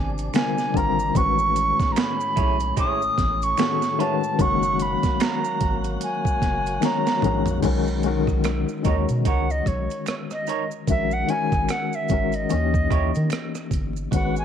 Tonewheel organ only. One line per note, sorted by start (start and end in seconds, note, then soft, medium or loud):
0.00 1.12 C3 medium
0.00 1.11 D4 medium
1.14 4.35 A2 medium
1.14 4.35 C#4 medium
4.39 7.60 F#3 medium
4.39 7.60 A#3 medium
4.39 7.60 F#4 medium
14.11 14.45 G#3 medium
14.11 14.45 B3 medium
14.11 14.45 F#4 medium